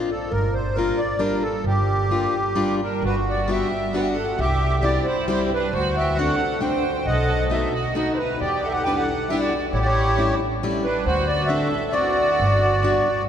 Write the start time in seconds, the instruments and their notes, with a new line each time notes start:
0.11 accordion A4
0.31 upright bass G1, accordion A#4
0.53 accordion C5
0.75 steel-string acoustic guitar G3 A#3 D4 F4, accordion A#4
0.98 accordion D5
1.19 steel-string acoustic guitar G3 A#3 D4 F4, accordion A#4
1.42 accordion A4
1.64 upright bass G1, accordion G4
2.10 steel-string acoustic guitar G3 A#3 D4 F4
2.55 steel-string acoustic guitar G3 A#3 D4 F4
2.82 violin D4, accordion A#4
3.02 upright bass G1, violin D4, accordion F#4 B4
3.29 violin F#4, accordion D5
3.48 steel-string acoustic guitar G3 B3 D4 F#4, violin G4, accordion E5
3.93 steel-string acoustic guitar G3 B3 D4 F#4, violin B4, accordion F#5
4.00 violin G4, accordion E5
4.10 violin A4, accordion F#5
4.38 upright bass C2, accordion G4 E5, violin G4
4.82 steel-string acoustic guitar G3 C4 E4 G4, violin G4, accordion D5
5.04 violin E4, accordion C5
5.28 steel-string acoustic guitar G3 C4 E4 G4, violin E4, accordion C5
5.45 violin E4, accordion C5
5.53 violin D4, accordion B4
5.73 upright bass D2, accordion F#4 C5, violin F#4
5.97 violin G4, accordion E5
6.15 steel-string acoustic guitar A3, accordion F#5
6.19 steel-string acoustic guitar C4 D4 F#4, violin A4
6.61 steel-string acoustic guitar A3 C4 D4 F#4, violin C5, accordion G5
7.06 upright bass B1, violin A4, accordion D#5 F#5
7.50 steel-string acoustic guitar A3 B3 D#4 F#4, violin A4, accordion E5
7.74 violin F#4, accordion D#5
7.95 steel-string acoustic guitar A3 B3 D#4 F#4, violin F#4, accordion D#5
8.13 violin E4, accordion C5
8.18 violin D#4, accordion B4
8.40 upright bass E2, violin G4, accordion G4 D5
8.63 violin A4, accordion E5 F#5
8.70 violin G4, accordion F#5
8.75 violin A4
8.84 steel-string acoustic guitar G3 D4, violin B4, accordion G5
8.88 steel-string acoustic guitar B3 E4
8.95 violin A4, accordion F#5
9.29 steel-string acoustic guitar G3 B3 D4 E4, violin G4, accordion E5
9.38 violin F#4, accordion D5
9.73 upright bass A1, violin E4, accordion G4 C#5
9.80 violin F#4, accordion D5
9.86 violin E4, accordion C#5
10.18 steel-string acoustic guitar G3 A3 C#4 E4
10.63 steel-string acoustic guitar G3 A3 C#4 E4
10.84 violin D4, accordion B4
11.05 upright bass D2, accordion F#4 C5, violin F#4
11.27 violin F#4, accordion D5
11.46 steel-string acoustic guitar A3 C4 D4 F#4, violin A4, accordion E5
11.91 steel-string acoustic guitar A3 C4 D4 F#4, accordion F#4 D5, violin F#4
12.40 upright bass G1
12.83 steel-string acoustic guitar G3 B3 D4 F#4